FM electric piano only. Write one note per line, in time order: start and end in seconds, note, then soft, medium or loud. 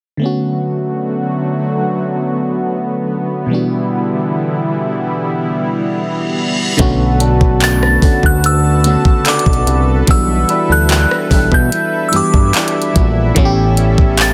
0.17 3.44 D3 medium
0.17 3.45 A3 medium
0.22 3.46 B3 medium
0.22 3.47 C#4 medium
0.22 3.48 F#4 medium
3.46 6.73 B2 medium
3.46 6.74 E3 medium
3.46 6.75 G3 medium
3.51 6.76 B3 medium
3.51 6.76 D4 medium
3.51 6.77 F#4 medium
6.77 7.62 D3 loud
6.77 7.62 A3 loud
6.77 7.63 B3 loud
6.77 7.63 C#4 loud
6.81 7.64 F#4 loud
8.01 8.57 D3 medium
8.01 8.58 A3 medium
8.01 8.58 B3 medium
8.01 8.59 C#4 medium
8.05 8.59 F#4 medium
8.83 8.90 C#3 medium
8.83 9.68 A3 medium
8.83 9.68 B3 medium
8.83 9.69 C#4 medium
8.87 9.71 D3 medium
8.87 9.69 F#4 medium
10.06 10.49 E3 loud
10.06 10.49 G3 medium
10.06 10.50 B3 medium
10.06 10.50 D4 medium
10.06 10.51 F#4 loud
10.68 11.10 E3 medium
10.68 11.11 G3 medium
10.68 11.11 B3 medium
10.68 11.12 D4 medium
10.68 11.12 A4 medium
11.30 11.86 E3 medium
11.30 11.87 G3 medium
11.30 11.87 B3 medium
11.30 11.88 D4 medium
11.34 11.88 A4 medium
12.11 12.68 E3 medium
12.11 12.69 G3 medium
12.11 12.69 B3 medium
12.11 12.70 D4 medium
12.16 12.70 G4 medium
12.94 13.22 E3 medium
12.94 13.23 G3 medium
12.94 13.23 B3 medium
12.94 13.24 D4 medium
12.98 13.24 F#4 medium
13.35 14.19 E3 loud
13.35 14.20 A3 loud
13.35 14.20 B3 loud
13.35 14.21 C#4 loud
13.39 13.44 F#4 loud
13.45 14.25 G4 loud